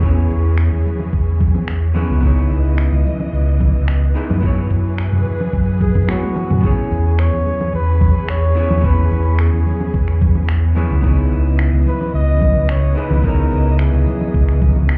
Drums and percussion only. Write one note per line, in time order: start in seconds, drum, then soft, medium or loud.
0.03 kick loud
0.03 shaker soft
0.17 shaker soft
0.31 shaker medium
0.45 shaker soft
0.58 finger snap medium
0.58 shaker soft
0.73 shaker soft
0.86 high conga medium
0.86 shaker medium
0.99 low conga medium
0.99 shaker soft
1.13 kick medium
1.13 shaker soft
1.28 shaker soft
1.40 kick medium
1.40 high conga medium
1.40 shaker medium
1.55 low conga medium
1.55 shaker soft
1.68 finger snap medium
1.68 shaker soft
1.83 shaker soft
1.95 low conga medium
1.95 shaker medium
2.10 high conga medium
2.10 shaker soft
2.23 kick loud
2.23 shaker soft
2.38 shaker soft
2.51 shaker medium
2.66 shaker soft
2.78 finger snap medium
2.78 shaker soft
2.93 shaker soft
3.06 high conga medium
3.06 shaker medium
3.20 low conga medium
3.20 shaker soft
3.34 shaker soft
3.48 shaker soft
3.61 kick medium
3.61 high conga medium
3.61 shaker medium
3.75 shaker soft
3.88 finger snap loud
3.88 shaker soft
4.03 shaker soft
4.16 shaker medium
4.29 high conga soft
4.29 low conga medium
4.29 shaker soft
4.43 kick loud
4.43 shaker soft
4.58 shaker soft
4.71 kick medium
4.71 shaker medium
4.86 shaker soft
4.98 finger snap loud
4.98 shaker soft
5.12 low conga medium
5.12 shaker soft
5.26 high conga medium
5.26 shaker medium
5.40 low conga medium
5.40 shaker soft
5.53 kick loud
5.53 shaker soft
5.69 shaker soft
5.80 kick medium
5.80 high conga medium
5.80 shaker medium
5.95 kick medium
5.95 low conga medium
5.95 shaker soft
6.09 finger snap loud
6.09 high tom medium
6.09 shaker soft
6.23 high tom medium
6.23 shaker soft
6.36 low conga medium
6.36 shaker medium
6.51 mid tom medium
6.51 high conga soft
6.51 shaker soft
6.63 kick loud
6.63 shaker soft
6.79 shaker soft
6.92 shaker medium
7.06 shaker soft
7.19 finger snap loud
7.19 shaker soft
7.34 shaker soft
7.46 high conga medium
7.46 shaker medium
7.61 low conga medium
7.61 shaker soft
7.74 shaker soft
7.89 shaker soft
8.01 kick loud
8.01 high conga medium
8.01 shaker medium
8.16 shaker soft
8.29 finger snap loud
8.29 shaker soft
8.44 shaker soft
8.57 shaker medium
8.71 high conga medium
8.71 low conga medium
8.71 shaker soft
8.84 kick loud
8.84 shaker soft
8.99 shaker soft
9.12 shaker medium
9.26 shaker soft
9.39 finger snap loud
9.39 shaker soft
9.54 shaker soft
9.67 high conga medium
9.67 shaker medium
9.80 low conga medium
9.80 shaker soft
9.94 kick loud
9.94 shaker soft
10.08 finger snap soft
10.08 shaker soft
10.21 kick loud
10.21 high conga loud
10.21 shaker medium
10.35 low conga medium
10.35 shaker soft
10.49 finger snap loud
10.49 shaker soft
10.64 shaker soft
10.76 low conga medium
10.76 shaker medium
10.90 high conga medium
10.90 shaker soft
11.04 kick loud
11.04 shaker soft
11.19 shaker soft
11.32 shaker medium
11.46 shaker soft
11.59 finger snap loud
11.59 shaker soft
11.74 shaker soft
11.86 high conga medium
11.86 shaker medium
12.01 low conga medium
12.01 shaker soft
12.15 shaker soft
12.29 shaker soft
12.41 kick loud
12.41 high conga loud
12.41 shaker medium
12.56 shaker soft
12.69 finger snap loud
12.69 shaker soft
12.84 shaker soft
12.97 shaker medium
13.10 high conga medium
13.10 low conga medium
13.10 shaker soft
13.24 kick loud
13.24 shaker soft
13.39 shaker soft
13.52 shaker medium
13.66 shaker soft
13.79 finger snap loud
13.79 shaker soft
13.93 low conga medium
13.93 shaker soft
14.07 high conga medium
14.07 shaker medium
14.21 low conga medium
14.21 shaker soft
14.34 kick loud
14.34 shaker soft
14.49 finger snap soft
14.49 shaker soft
14.62 kick loud
14.62 high conga loud
14.62 shaker medium
14.76 low conga medium
14.76 shaker soft
14.89 finger snap loud
14.89 shaker soft